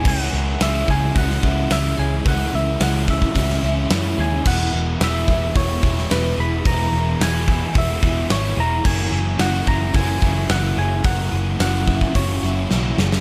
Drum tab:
CC |x---------------|----------------|x---------------|----------------|
HH |----o---o---o---|o---o---o---o---|----o---o---o---|o---o---o---o---|
SD |----o----o--o---|----o----o--o---|----o------oo---|----o-------o---|
BD |o-----o-o-o-----|o-----ooo-------|o-----o-o-o-----|o-----o-o-o-----|

CC |x---------------|----------------|
HH |----o---o---o---|o---o---o-------|
SD |----o-------o---|----o-------o-oo|
BD |o-----o-o-o-----|o-----ooo-------|